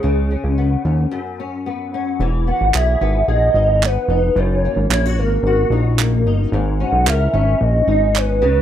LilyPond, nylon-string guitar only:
\new Staff \with { instrumentName = "Nylon-string guitar" } { \time 4/4 \key e \lydian \tempo 4 = 111 cis8 cis'8 b8 cis'8 fis,8 cis'8 b8 cis'8 | e8 b8 gis'8 b8 gis'8 dis'8 b8 dis'8 | fis,8 ais8 e'16 fis'16 ais8 fis'8 dis'8 ais8 dis'8 | gis,8 cis'8 ais'8 cis'4 dis'8 cis'8 cis8 | }